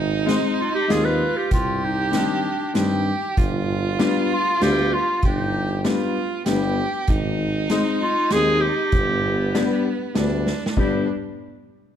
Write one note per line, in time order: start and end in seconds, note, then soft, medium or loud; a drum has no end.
0.00 0.40 G#1 medium
0.00 0.92 D#4 loud
0.26 0.58 G#3 loud
0.26 0.58 C4 medium
0.26 0.59 D#4 medium
0.26 snare medium
0.26 closed hi-hat soft
0.59 0.73 F4 medium
0.75 0.93 G4 loud
0.88 1.27 D#2 loud
0.88 1.20 G#3 medium
0.88 1.20 C4 medium
0.88 1.21 D#4 medium
0.88 1.52 F4 loud
0.88 1.06 G#4 loud
0.88 snare medium
0.88 closed hi-hat soft
1.05 1.39 B4 medium
1.37 1.52 G4 loud
1.51 2.26 C2 medium
1.51 1.86 F4 medium
1.51 2.76 G4 loud
1.51 kick medium
1.51 closed hi-hat soft
1.84 2.18 D#4 medium
2.12 2.45 D#3 medium
2.12 2.44 G3 medium
2.12 2.44 C4 medium
2.12 snare medium
2.12 closed hi-hat medium
2.17 3.08 D4 medium
2.74 3.13 G2 medium
2.74 3.07 D#3 medium
2.74 3.06 G3 medium
2.74 3.06 C4 medium
2.74 3.39 G4 loud
2.74 snare medium
2.74 closed hi-hat medium
3.37 4.12 G1 medium
3.37 5.26 F4 loud
3.37 kick medium
3.37 closed hi-hat soft
3.99 4.30 G3 medium
3.99 4.31 B3 medium
3.99 4.31 D4 loud
3.99 snare medium
3.99 closed hi-hat soft
4.33 4.64 F4 loud
4.61 4.98 D2 medium
4.61 4.93 G3 medium
4.61 4.93 B3 medium
4.61 4.93 D4 medium
4.61 4.96 G4 loud
4.61 snare medium
4.61 closed hi-hat soft
4.94 5.24 F4 loud
5.22 5.97 G1 medium
5.22 5.87 G4 medium
5.22 kick medium
5.22 closed hi-hat soft
5.27 5.83 D#4 medium
5.84 6.16 G3 medium
5.84 6.16 B3 medium
5.84 6.16 D4 medium
5.84 6.46 F4 medium
5.84 snare medium
5.84 closed hi-hat soft
6.46 6.84 G1 medium
6.46 6.78 G3 medium
6.46 6.78 B3 medium
6.46 6.78 D4 medium
6.46 7.11 G4 loud
6.46 snare medium
6.46 closed hi-hat medium
7.07 7.82 G#1 medium
7.07 8.96 D#4 loud
7.07 kick medium
7.07 closed hi-hat medium
7.70 8.01 G#3 loud
7.70 8.01 C4 medium
7.70 8.02 D#4 loud
7.70 snare medium
7.70 closed hi-hat medium
8.03 8.34 F4 loud
8.30 8.69 D#2 medium
8.30 8.63 G#3 medium
8.30 8.64 C4 medium
8.30 8.64 D#4 medium
8.30 8.62 G#4 loud
8.30 snare medium
8.30 closed hi-hat medium
8.61 10.15 G4 loud
8.92 9.67 G1 medium
8.92 10.18 B3 loud
8.92 kick medium
8.92 closed hi-hat soft
9.55 9.86 G3 loud
9.55 9.86 B3 medium
9.55 9.86 D4 medium
9.55 snare medium
9.55 closed hi-hat soft
10.15 10.53 D2 loud
10.15 10.46 G3 medium
10.15 10.46 B3 medium
10.15 10.47 D4 medium
10.15 10.78 D4 medium
10.15 snare medium
10.15 closed hi-hat medium
10.47 snare medium
10.66 snare medium
10.77 11.06 G1 medium
10.77 11.06 G3 medium
10.77 11.06 B3 medium
10.77 11.06 D4 medium
10.77 11.07 D4 medium
10.77 11.06 G4 medium
10.77 kick medium